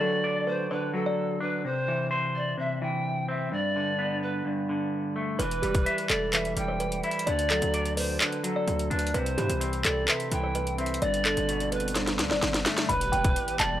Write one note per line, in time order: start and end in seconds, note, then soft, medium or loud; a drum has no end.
0.00 0.70 D3 medium
0.00 0.92 F#3 medium
0.00 0.45 A4 medium
0.00 0.43 D5 loud
0.00 downlifter medium
0.24 1.41 D5 medium
0.47 0.66 B4 medium
0.47 0.70 C5 medium
0.71 1.65 D3 medium
0.71 0.93 B4 medium
0.71 1.04 C5 medium
0.93 1.64 F#3 medium
0.93 1.38 A4 medium
1.06 1.61 D5 medium
1.40 1.64 D4 medium
1.40 1.63 B4 medium
1.64 2.56 C3 medium
1.64 2.06 C5 loud
1.88 2.80 E3 medium
2.11 3.28 C5 medium
2.35 2.57 D5 medium
2.58 3.51 C3 medium
2.58 2.81 E5 medium
2.82 3.52 E3 medium
2.82 3.26 G5 medium
3.28 3.52 C4 medium
3.28 3.51 E5 medium
3.52 4.44 G2 medium
3.52 4.18 D5 loud
3.76 4.68 D3 medium
3.99 5.16 B3 medium
4.22 4.44 B4 medium
4.45 5.39 G2 medium
4.69 5.39 D3 medium
5.16 5.39 A3 medium
5.39 5.62 E1 loud
5.39 6.32 E3 medium
5.39 5.58 B4 loud
5.39 6.06 B4 loud
5.39 closed hi-hat medium
5.51 closed hi-hat medium
5.62 5.85 E1 loud
5.62 6.56 G3 medium
5.62 6.07 G4 medium
5.62 closed hi-hat medium
5.75 kick medium
5.75 closed hi-hat medium
5.86 7.03 E5 medium
5.86 closed hi-hat medium
5.98 closed hi-hat medium
6.10 6.55 E1 loud
6.10 6.28 A4 medium
6.10 6.32 D5 medium
6.10 clap loud
6.10 closed hi-hat medium
6.33 7.27 E3 medium
6.33 6.66 B4 medium
6.33 6.56 E5 medium
6.33 clap loud
6.33 closed hi-hat medium
6.45 closed hi-hat soft
6.57 7.02 E1 loud
6.57 7.27 G3 medium
6.57 7.01 G5 medium
6.57 closed hi-hat medium
6.68 6.78 C5 medium
6.80 7.24 B4 medium
6.80 closed hi-hat medium
6.92 closed hi-hat medium
7.03 7.27 E4 medium
7.03 7.26 E5 medium
7.03 closed hi-hat soft
7.11 closed hi-hat medium
7.19 closed hi-hat medium
7.27 7.61 D2 loud
7.27 8.20 D3 medium
7.27 7.45 D5 loud
7.27 7.93 D5 loud
7.27 closed hi-hat medium
7.39 closed hi-hat medium
7.50 8.42 F#3 medium
7.50 7.95 A4 medium
7.50 clap medium
7.50 closed hi-hat medium
7.62 8.18 D2 loud
7.62 closed hi-hat medium
7.74 8.91 D5 medium
7.74 closed hi-hat medium
7.86 closed hi-hat medium
7.97 8.16 B4 medium
7.97 8.20 C5 medium
7.97 open hi-hat medium
8.20 9.15 D3 medium
8.20 8.43 B4 medium
8.20 8.54 C5 medium
8.20 clap loud
8.20 closed hi-hat medium
8.33 closed hi-hat medium
8.43 9.14 F#3 medium
8.43 8.88 A4 medium
8.43 closed hi-hat medium
8.56 9.11 D5 medium
8.67 8.90 D2 loud
8.67 closed hi-hat medium
8.79 closed hi-hat medium
8.90 9.14 D2 loud
8.90 9.14 D4 medium
8.90 9.13 B4 medium
8.90 closed hi-hat soft
8.99 closed hi-hat medium
9.07 closed hi-hat medium
9.14 9.37 C2 loud
9.14 10.06 C3 medium
9.14 9.33 B4 loud
9.14 9.59 C5 loud
9.14 closed hi-hat medium
9.26 closed hi-hat medium
9.38 9.49 G2 loud
9.38 10.30 E3 medium
9.38 9.82 G4 medium
9.38 closed hi-hat medium
9.49 9.83 C2 loud
9.49 closed hi-hat medium
9.61 10.77 C4 medium
9.61 closed hi-hat medium
9.73 closed hi-hat soft
9.85 10.07 C2 loud
9.85 10.03 A4 medium
9.85 10.07 D5 medium
9.85 clap loud
9.85 closed hi-hat medium
10.07 11.02 C3 medium
10.07 10.41 B4 medium
10.07 10.30 E5 medium
10.07 clap loud
10.07 closed hi-hat medium
10.20 closed hi-hat medium
10.31 10.99 C2 loud
10.31 11.02 E3 medium
10.31 10.76 G5 medium
10.31 closed hi-hat medium
10.43 10.53 C5 medium
10.55 10.99 B4 medium
10.55 closed hi-hat medium
10.67 closed hi-hat medium
10.78 11.02 C4 medium
10.78 11.01 E5 medium
10.78 closed hi-hat soft
10.86 closed hi-hat medium
10.94 closed hi-hat medium
11.02 11.36 G1 loud
11.02 11.94 G2 medium
11.02 11.68 D5 loud
11.02 11.21 D5 loud
11.02 closed hi-hat medium
11.02 swell medium
11.14 closed hi-hat medium
11.25 12.18 D3 medium
11.25 11.70 A4 medium
11.25 clap medium
11.25 closed hi-hat medium
11.37 12.21 G1 loud
11.37 closed hi-hat medium
11.49 12.66 B2 medium
11.49 closed hi-hat medium
11.60 closed hi-hat medium
11.72 11.91 B4 medium
11.72 11.95 B4 medium
11.72 closed hi-hat soft
11.72 open hi-hat medium
11.80 closed hi-hat medium
11.88 closed hi-hat medium
11.95 12.89 G2 medium
11.95 12.29 C5 medium
11.95 snare medium
11.95 closed hi-hat medium
12.07 snare medium
12.07 closed hi-hat medium
12.19 12.32 D2 loud
12.19 12.89 D3 medium
12.19 snare medium
12.19 closed hi-hat medium
12.31 12.42 G1 medium
12.31 12.86 D5 medium
12.31 snare medium
12.43 12.65 G1 loud
12.43 snare medium
12.43 closed hi-hat medium
12.54 snare medium
12.54 closed hi-hat medium
12.65 12.89 A3 medium
12.65 snare loud
12.65 closed hi-hat medium
12.78 snare medium
12.78 closed hi-hat medium
12.89 13.12 E1 loud
12.89 13.80 E3 medium
12.89 13.80 G3 medium
12.89 13.80 B3 medium
12.89 13.80 G4 medium
12.89 13.56 B4 loud
12.89 13.08 B5 loud
12.89 closed hi-hat medium
12.89 impact medium
13.01 closed hi-hat medium
13.12 13.35 E1 loud
13.12 13.57 G5 medium
13.12 closed hi-hat medium
13.24 kick medium
13.24 closed hi-hat medium
13.36 closed hi-hat medium
13.48 closed hi-hat soft
13.60 13.80 E1 loud
13.60 13.80 D5 medium
13.60 13.78 A5 medium
13.60 clap loud
13.60 closed hi-hat medium